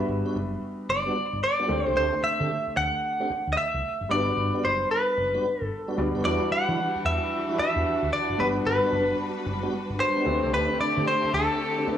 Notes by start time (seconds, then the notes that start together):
Already playing: G3 B3 D4 F#4 B4 E5
0.08 G1
0.25 G3 B3 D4 F#4
0.35 F#1
0.89 F#1 D5
1.06 G3 B3 D4 F#4
1.33 G1
1.44 D5
1.59 G3 B3 D4 F#4
1.68 D2 A3 C4 D4 G4 C5
1.86 C2 A3 C4 D4 G4 C5
1.95 D2 A3 C4 D4 G4 C5
2.23 E5, muted fingered electric bass stroke
2.40 D3 A3 C4 D4 G4
2.67 muted fingered electric bass stroke
2.76 D2 F#5
3.20 A3 C4 D4 G4
3.30 muted fingered electric bass stroke
3.47 D2
3.53 D#5, muted fingered electric bass stroke
3.57 E5
3.74 C2
4.01 F#1
4.09 G1 G3 B3 D4 F#4 B4 D5
4.37 G1
4.54 G3 B3 D4 F#4
4.64 F#1 C5
4.91 B4
5.17 F#1
5.34 G3 B3 D4 F#4
5.61 G1 A4
5.88 G3 B3 D4 F#4
5.97 D2 G3 B3 D4 F#4 D5
6.15 F#1 G3 B3 D4 F#4
6.23 E2 E3 G3 D4 E4 F#4 B4 D5
6.51 F#5, muted fingered electric bass stroke
6.68 E3 G3 D4 E4 F#4
6.95 muted fingered electric bass stroke
7.05 E2 E5
7.49 G3 D4 E4 F#4
7.58 E5, muted fingered electric bass stroke
7.76 E2
7.85 muted fingered electric bass stroke
8.02 D2
8.13 D5
8.29 F#1
8.38 G1 G3 B3 D4 F#4 B4
8.65 G1 B4
8.83 G3 B3 D4 F#4
8.92 F#1
9.46 F#1
9.63 G3 B3 D4 F#4
9.90 G1
10.00 C5
10.16 G3 B3 D4 F#4
10.25 D2 D3 A3 C4 D4 G4 B4
10.34 C5
10.43 C2 A3 C4 D4 G4
10.52 D2 A3 C4 D4 G4 B4
10.80 D5, muted fingered electric bass stroke
10.97 D3 A3 C4 D4 G4
11.07 C5
11.24 muted fingered electric bass stroke
11.33 D2 A4
11.77 A3 C4 D4 G4
11.86 A3 C4 D4 G4 B4, muted fingered electric bass stroke